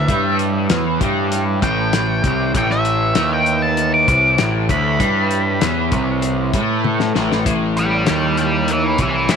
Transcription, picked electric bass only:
0, 0, Header, 1, 2, 480
1, 0, Start_track
1, 0, Tempo, 614125
1, 72, Time_signature, 4, 2, 24, 8
1, 7317, End_track
2, 0, Start_track
2, 0, Title_t, "Picked electric bass"
2, 0, Program_c, 0, 34
2, 67, Note_on_c, 0, 43, 81
2, 519, Note_off_c, 0, 43, 0
2, 554, Note_on_c, 0, 40, 94
2, 777, Note_off_c, 0, 40, 0
2, 788, Note_on_c, 0, 43, 97
2, 1239, Note_off_c, 0, 43, 0
2, 1271, Note_on_c, 0, 33, 103
2, 1721, Note_off_c, 0, 33, 0
2, 1748, Note_on_c, 0, 36, 89
2, 1974, Note_off_c, 0, 36, 0
2, 1986, Note_on_c, 0, 33, 91
2, 2439, Note_off_c, 0, 33, 0
2, 2467, Note_on_c, 0, 39, 89
2, 3160, Note_off_c, 0, 39, 0
2, 3189, Note_on_c, 0, 36, 102
2, 3415, Note_off_c, 0, 36, 0
2, 3429, Note_on_c, 0, 33, 79
2, 3655, Note_off_c, 0, 33, 0
2, 3669, Note_on_c, 0, 38, 98
2, 3895, Note_off_c, 0, 38, 0
2, 3911, Note_on_c, 0, 43, 80
2, 4362, Note_off_c, 0, 43, 0
2, 4395, Note_on_c, 0, 40, 93
2, 4619, Note_off_c, 0, 40, 0
2, 4631, Note_on_c, 0, 36, 106
2, 5082, Note_off_c, 0, 36, 0
2, 5110, Note_on_c, 0, 45, 91
2, 5562, Note_off_c, 0, 45, 0
2, 5594, Note_on_c, 0, 33, 100
2, 5818, Note_off_c, 0, 33, 0
2, 5834, Note_on_c, 0, 33, 77
2, 6284, Note_off_c, 0, 33, 0
2, 6325, Note_on_c, 0, 39, 91
2, 7009, Note_off_c, 0, 39, 0
2, 7030, Note_on_c, 0, 36, 93
2, 7255, Note_off_c, 0, 36, 0
2, 7273, Note_on_c, 0, 33, 86
2, 7317, Note_off_c, 0, 33, 0
2, 7317, End_track
0, 0, End_of_file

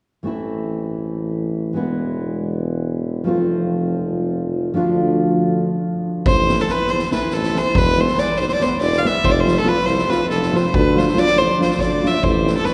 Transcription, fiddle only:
0, 0, Header, 1, 2, 480
1, 0, Start_track
1, 0, Key_signature, 0, "minor"
1, 0, Tempo, 427046
1, 297, Time_signature, 7, 3, 24, 8
1, 14316, End_track
2, 0, Start_track
2, 0, Title_t, "Fiddle"
2, 0, Program_c, 0, 110
2, 7044, Note_on_c, 0, 72, 95
2, 7428, Note_on_c, 0, 69, 70
2, 7445, Note_off_c, 0, 72, 0
2, 7544, Note_on_c, 0, 71, 86
2, 7561, Note_off_c, 0, 69, 0
2, 7757, Note_on_c, 0, 72, 70
2, 7773, Note_off_c, 0, 71, 0
2, 8012, Note_off_c, 0, 72, 0
2, 8019, Note_on_c, 0, 71, 59
2, 8243, Note_on_c, 0, 69, 73
2, 8260, Note_off_c, 0, 71, 0
2, 8516, Note_on_c, 0, 72, 85
2, 8533, Note_off_c, 0, 69, 0
2, 8739, Note_on_c, 0, 71, 93
2, 8756, Note_off_c, 0, 72, 0
2, 8997, Note_on_c, 0, 72, 82
2, 9014, Note_off_c, 0, 71, 0
2, 9203, Note_on_c, 0, 74, 84
2, 9220, Note_off_c, 0, 72, 0
2, 9410, Note_on_c, 0, 72, 79
2, 9427, Note_off_c, 0, 74, 0
2, 9448, Note_off_c, 0, 72, 0
2, 9455, Note_on_c, 0, 72, 67
2, 9529, Note_off_c, 0, 72, 0
2, 9545, Note_on_c, 0, 72, 98
2, 9596, Note_off_c, 0, 72, 0
2, 9602, Note_on_c, 0, 74, 61
2, 9692, Note_on_c, 0, 72, 80
2, 9709, Note_off_c, 0, 74, 0
2, 9898, Note_off_c, 0, 72, 0
2, 9905, Note_on_c, 0, 74, 79
2, 10094, Note_on_c, 0, 77, 63
2, 10111, Note_off_c, 0, 74, 0
2, 10189, Note_on_c, 0, 76, 81
2, 10206, Note_off_c, 0, 77, 0
2, 10395, Note_on_c, 0, 72, 90
2, 10412, Note_off_c, 0, 76, 0
2, 10465, Note_on_c, 0, 74, 69
2, 10482, Note_off_c, 0, 72, 0
2, 10565, Note_on_c, 0, 72, 76
2, 10582, Note_off_c, 0, 74, 0
2, 10770, Note_on_c, 0, 69, 84
2, 10787, Note_off_c, 0, 72, 0
2, 10881, Note_on_c, 0, 71, 91
2, 10898, Note_off_c, 0, 69, 0
2, 11081, Note_on_c, 0, 72, 87
2, 11098, Note_off_c, 0, 71, 0
2, 11352, Note_on_c, 0, 71, 84
2, 11369, Note_off_c, 0, 72, 0
2, 11569, Note_off_c, 0, 71, 0
2, 11576, Note_on_c, 0, 69, 70
2, 11869, Note_on_c, 0, 72, 72
2, 11886, Note_off_c, 0, 69, 0
2, 12007, Note_off_c, 0, 72, 0
2, 12007, Note_on_c, 0, 72, 73
2, 12082, Note_on_c, 0, 71, 86
2, 12099, Note_off_c, 0, 72, 0
2, 12349, Note_on_c, 0, 72, 76
2, 12366, Note_off_c, 0, 71, 0
2, 12568, Note_on_c, 0, 74, 102
2, 12585, Note_off_c, 0, 72, 0
2, 12792, Note_on_c, 0, 72, 89
2, 12809, Note_off_c, 0, 74, 0
2, 13049, Note_off_c, 0, 72, 0
2, 13064, Note_on_c, 0, 72, 69
2, 13267, Note_on_c, 0, 74, 73
2, 13284, Note_off_c, 0, 72, 0
2, 13568, Note_on_c, 0, 76, 79
2, 13585, Note_off_c, 0, 74, 0
2, 13751, Note_on_c, 0, 72, 74
2, 13768, Note_off_c, 0, 76, 0
2, 14103, Note_off_c, 0, 72, 0
2, 14132, Note_on_c, 0, 69, 78
2, 14219, Note_on_c, 0, 71, 81
2, 14236, Note_off_c, 0, 69, 0
2, 14316, Note_off_c, 0, 71, 0
2, 14316, End_track
0, 0, End_of_file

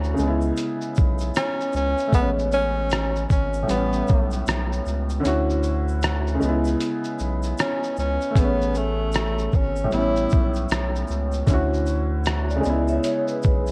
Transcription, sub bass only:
0, 0, Header, 1, 2, 480
1, 0, Start_track
1, 0, Key_signature, 3, "major"
1, 0, Tempo, 779221
1, 1310, Time_signature, 4, 2, 24, 8
1, 8449, End_track
2, 0, Start_track
2, 0, Title_t, "Sub bass"
2, 0, Program_c, 0, 38
2, 0, Note_on_c, 0, 38, 107
2, 86, Note_off_c, 0, 38, 0
2, 115, Note_on_c, 0, 37, 111
2, 321, Note_off_c, 0, 37, 0
2, 607, Note_on_c, 0, 35, 94
2, 807, Note_off_c, 0, 35, 0
2, 1074, Note_on_c, 0, 37, 89
2, 1200, Note_off_c, 0, 37, 0
2, 1312, Note_on_c, 0, 33, 102
2, 2006, Note_off_c, 0, 33, 0
2, 2036, Note_on_c, 0, 32, 100
2, 2241, Note_off_c, 0, 32, 0
2, 2276, Note_on_c, 0, 33, 108
2, 2481, Note_off_c, 0, 33, 0
2, 2527, Note_on_c, 0, 35, 86
2, 2727, Note_off_c, 0, 35, 0
2, 2756, Note_on_c, 0, 35, 98
2, 2961, Note_off_c, 0, 35, 0
2, 2995, Note_on_c, 0, 37, 85
2, 3201, Note_off_c, 0, 37, 0
2, 3236, Note_on_c, 0, 38, 101
2, 3928, Note_off_c, 0, 38, 0
2, 3959, Note_on_c, 0, 37, 106
2, 4163, Note_off_c, 0, 37, 0
2, 4438, Note_on_c, 0, 35, 92
2, 4642, Note_off_c, 0, 35, 0
2, 4915, Note_on_c, 0, 37, 84
2, 5041, Note_off_c, 0, 37, 0
2, 5149, Note_on_c, 0, 33, 110
2, 5845, Note_off_c, 0, 33, 0
2, 5876, Note_on_c, 0, 32, 94
2, 6081, Note_off_c, 0, 32, 0
2, 6115, Note_on_c, 0, 33, 110
2, 6320, Note_off_c, 0, 33, 0
2, 6367, Note_on_c, 0, 35, 94
2, 6567, Note_off_c, 0, 35, 0
2, 6597, Note_on_c, 0, 35, 97
2, 6802, Note_off_c, 0, 35, 0
2, 6837, Note_on_c, 0, 37, 84
2, 7041, Note_off_c, 0, 37, 0
2, 7071, Note_on_c, 0, 38, 99
2, 7765, Note_off_c, 0, 38, 0
2, 7798, Note_on_c, 0, 37, 108
2, 8002, Note_off_c, 0, 37, 0
2, 8286, Note_on_c, 0, 35, 89
2, 8449, Note_off_c, 0, 35, 0
2, 8449, End_track
0, 0, End_of_file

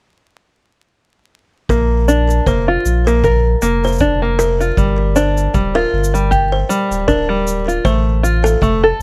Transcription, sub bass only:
0, 0, Header, 1, 2, 480
1, 0, Start_track
1, 0, Key_signature, -2, "major"
1, 0, Tempo, 769231
1, 1061, Time_signature, 4, 2, 24, 8
1, 5630, End_track
2, 0, Start_track
2, 0, Title_t, "Sub bass"
2, 0, Program_c, 0, 38
2, 1058, Note_on_c, 0, 34, 86
2, 1499, Note_off_c, 0, 34, 0
2, 1538, Note_on_c, 0, 29, 71
2, 1729, Note_off_c, 0, 29, 0
2, 1779, Note_on_c, 0, 34, 83
2, 2220, Note_off_c, 0, 34, 0
2, 2259, Note_on_c, 0, 29, 88
2, 2940, Note_off_c, 0, 29, 0
2, 2976, Note_on_c, 0, 31, 89
2, 3419, Note_off_c, 0, 31, 0
2, 3460, Note_on_c, 0, 26, 70
2, 3650, Note_off_c, 0, 26, 0
2, 3699, Note_on_c, 0, 31, 84
2, 4140, Note_off_c, 0, 31, 0
2, 4310, Note_on_c, 0, 26, 76
2, 4858, Note_off_c, 0, 26, 0
2, 4898, Note_on_c, 0, 33, 88
2, 5339, Note_off_c, 0, 33, 0
2, 5377, Note_on_c, 0, 29, 66
2, 5569, Note_off_c, 0, 29, 0
2, 5630, End_track
0, 0, End_of_file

